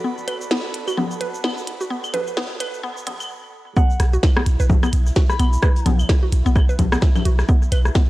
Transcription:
Already playing: F#4 A4 B4 D5 B5
0.04 B3
0.18 shaker
0.28 B4, closed hi-hat, claves
0.41 shaker
0.51 B3, snare
0.74 closed hi-hat
0.88 F#4, claves, shaker
0.97 B3, low conga
1.11 shaker
1.21 B4, closed hi-hat
1.34 shaker
1.44 B3, snare, claves
1.57 shaker
1.67 closed hi-hat
1.81 F#4, shaker
1.90 B3
2.04 claves, shaker
2.14 B4, closed hi-hat, low conga
2.27 shaker
2.37 B3, snare
2.60 B4, closed hi-hat, claves
2.74 shaker
2.83 B3
2.97 shaker
3.07 B3, closed hi-hat, low conga
3.20 claves, shaker
3.76 B3 E4 F#5, kick, shaker
3.90 shaker
4.00 B1, cross-stick, snare, closed hi-hat, shaker
4.13 F#4, shaker
4.23 kick, snare, claves, shaker
4.37 B3, cross-stick
4.46 B1, closed hi-hat, shaker
4.60 B1 B4, shaker
4.70 kick, low conga, shaker
4.83 B3, cross-stick, claves, shaker
4.93 B1, closed hi-hat, shaker
5.06 snare, shaker
5.16 F#4, kick, snare, shaker
5.29 B5, cross-stick, snare, shaker
5.39 B1 B3, closed hi-hat, claves, shaker
5.53 shaker
5.62 B4, kick, cross-stick, shaker
5.76 closed hi-hat, shaker
5.86 B1 B3, snare, closed hi-hat, low conga, shaker
5.99 claves, shaker
6.09 kick, cross-stick, snare, shaker
6.23 F#4
6.32 B1, closed hi-hat, shaker
6.46 B1 B3, shaker
6.56 kick, cross-stick, claves, shaker
6.69 B4, shaker
6.79 B1, kick, closed hi-hat, low conga, shaker
6.92 B3, cross-stick, snare, shaker
7.02 kick, snare, shaker
7.16 snare, low conga, claves, shaker
7.25 B1 F#4, closed hi-hat, shaker
7.39 cross-stick, snare, shaker
7.49 B3, kick, shaker
7.62 shaker
7.71 B1 B4, snare, closed hi-hat, claves, shaker
7.85 cross-stick, shaker
7.95 B3, kick, snare, shaker

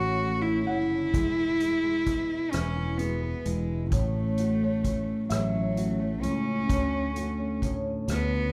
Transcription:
Already playing: A1 A2 E3 A3 F#4 C#5
0.00 C#4
0.22 A3 C#4
0.42 C#4 E4
0.65 F#1 C#3 E4 F#5
0.91 D3
1.14 E1 E3 G#3, kick, closed hi-hat
1.37 G#3
1.60 G#3, closed hi-hat
1.83 G#3
2.05 B2 G#3, kick, closed hi-hat
2.51 E1 E3 C#4 B4, cross-stick, closed hi-hat
2.76 E4
2.98 G#3 B3 F#4, closed hi-hat
3.23 B4
3.45 E1 B2 G#3 E4, closed hi-hat
3.91 A1 A2 A3 C#5, kick, closed hi-hat
4.16 C#4
4.38 A3 F#4, closed hi-hat
4.63 C#5
4.84 E3 C#4, kick, closed hi-hat
5.29 A1 A2 F#3 C#5 E5, cross-stick, closed hi-hat
5.55 C#4
5.77 A3 F#4, closed hi-hat
6.00 A3 C#5
6.22 C#2 E3 C#4, closed hi-hat
6.69 D2 D3 A3 C#4 F#4 C#5, kick, closed hi-hat
6.94 C#4
7.16 A3 F#4, closed hi-hat
7.40 C#5
7.62 A2 C#4, kick, closed hi-hat
8.08 D2 D3 B3 C#5, cross-stick, closed hi-hat
8.33 C#4

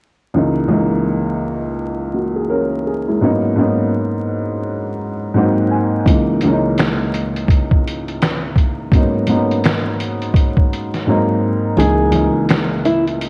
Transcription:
0.34 C#2 E3 G#3 A#3 D#4
0.68 C#2 E3 G#3 A#3 D#4
2.14 A#3 F#4
2.36 G#4
2.50 C#4 A#4
2.87 G#4
3.08 G#3 E4
3.21 G#2 F#3 A#3 B3 C#4 D#4
3.56 G#2 F#3 A#3 B3 C#4 D#4
5.34 G#2 F#3 A#3 C4 D#4 F#5
5.71 G#5
6.05 C#2 E3 G#3 A#3 D#4, kick, closed hi-hat
6.41 C#2 E3 G#3, closed hi-hat
6.46 A#3 C#4
6.53 D#4
6.78 finger snap, snare, closed hi-hat
7.14 closed hi-hat
7.36 closed hi-hat
7.48 kick, closed hi-hat
7.71 kick
7.88 closed hi-hat
8.08 closed hi-hat
8.22 finger snap, snare, closed hi-hat
8.56 kick, closed hi-hat
8.92 G#2 F#3 A#3 B3 C#4, kick, closed hi-hat
8.97 D#4
9.27 G#2 F#3 A#3 B3 C#4 D#4, closed hi-hat
9.51 closed hi-hat
9.64 finger snap, snare, closed hi-hat
10.00 closed hi-hat
10.22 closed hi-hat
10.34 kick, closed hi-hat
10.57 kick
10.73 closed hi-hat
10.94 snare, closed hi-hat
11.07 G#2 F#3 A#3 C4 D#4
11.77 C#2 E3 G#3 A#3 D#4 G#4, closed hi-hat
12.11 C#2 E3 G#3 A#3 D#4, closed hi-hat
12.49 finger snap, snare, closed hi-hat
12.85 E4, closed hi-hat
13.07 closed hi-hat
13.21 closed hi-hat

